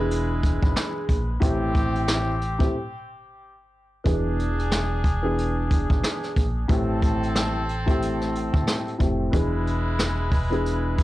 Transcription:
Already playing: E1 E3 G#3 B3 D4 E4 G#4 B4
0.11 closed hi-hat
0.43 kick, closed hi-hat
0.63 G#1, kick
0.76 cross-stick, snare, closed hi-hat
1.09 A#1, kick, closed hi-hat
1.40 A1 A2 A3 C4 G4, kick, closed hi-hat
1.75 kick, closed hi-hat
1.95 closed hi-hat
2.08 cross-stick, snare, closed hi-hat
2.41 closed hi-hat
2.59 A2 A3 C4 G4, kick, closed hi-hat
4.04 E1 E3 B3 D4 G#4, kick, closed hi-hat
4.39 closed hi-hat
4.59 closed hi-hat
4.71 cross-stick, snare, closed hi-hat
5.04 kick, closed hi-hat
5.23 E3 B3 D4 G#4
5.38 closed hi-hat
5.71 kick, closed hi-hat
5.90 G#1, kick
6.04 cross-stick, snare, closed hi-hat
6.23 snare, closed hi-hat
6.36 A#1, kick, closed hi-hat
6.68 A1 A2 A3 C4 G4 A4, kick, closed hi-hat
7.02 kick, closed hi-hat
7.23 closed hi-hat
7.35 cross-stick, snare, closed hi-hat
7.69 closed hi-hat
7.86 A2 A3 C4 G4, kick, closed hi-hat
8.02 closed hi-hat
8.21 snare
8.35 closed hi-hat
8.54 D2, kick
8.67 cross-stick, snare, closed hi-hat
8.88 closed hi-hat
8.98 F1 A2 A3 C4 G4, kick, closed hi-hat
9.32 E1 E3 G#3 B3 D4 E4 G#4 B4, kick, closed hi-hat
9.67 closed hi-hat
9.99 cross-stick, snare, closed hi-hat
10.32 kick, open hi-hat
10.50 E3 B3 D4 G#4, closed hi-hat
10.66 closed hi-hat
10.98 kick, closed hi-hat

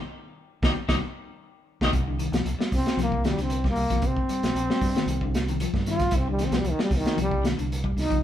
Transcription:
0.62 C2 C3 D#3 G3 D#4, kick, snare
0.88 C2 C3 D#3 G3 D#4, kick, snare
1.81 C2 C3 D#3 G3 D#4, kick, snare
1.93 C2 C3, kick, closed hi-hat
2.08 D3
2.19 D#3, closed hi-hat
2.32 C2 F3, snare, closed hi-hat
2.45 C2, closed hi-hat
2.58 G3, muted fingered electric bass stroke, snare
2.72 C2 C4, kick, snare, open hi-hat
2.86 snare, closed hi-hat
2.97 C2 F3, snare, closed hi-hat
3.02 A#3
3.12 kick
3.24 D#3, snare, closed hi-hat
3.28 G3
3.38 C2 D3, snare, closed hi-hat
3.42 C4
3.50 closed hi-hat
3.64 G3, kick, snare
3.69 A#3
3.75 C2, open hi-hat
3.90 C2 F3, kick, snare, closed hi-hat
4.02 C3, kick, closed hi-hat
4.06 C4
4.16 kick
4.29 G3, muted fingered electric bass stroke, closed hi-hat
4.43 A#1, snare, closed hi-hat
4.55 A#1, closed hi-hat
4.70 G3, snare
4.81 G2, kick, snare, open hi-hat
4.95 D#3, muted fingered electric bass stroke, snare, closed hi-hat
5.06 C2, closed hi-hat
5.21 D3, kick
5.34 snare, closed hi-hat
5.48 D#3, closed hi-hat
5.60 F3, closed hi-hat
5.73 G2, kick, snare
5.86 D#3 F4, snare, closed hi-hat
5.99 kick, snare, closed hi-hat
6.11 C2 C3, kick, snare, closed hi-hat
6.16 C4
6.28 D3 G3
6.39 D#3, snare, closed hi-hat
6.45 C4
6.51 C2 F3, snare, closed hi-hat
6.58 G3
6.64 C2, closed hi-hat
6.70 D#3
6.78 G3, muted fingered electric bass stroke, snare
6.83 G3
6.91 C2, kick, snare, open hi-hat
6.97 D#3
7.05 snare, closed hi-hat
7.16 C2 F3, closed hi-hat
7.22 G3
7.31 kick
7.43 D#3, snare, closed hi-hat
7.58 C2 D3, closed hi-hat
7.72 closed hi-hat
7.84 G3, kick
7.97 C2, snare, open hi-hat
8.01 D#4
8.10 C2 F3, kick, closed hi-hat

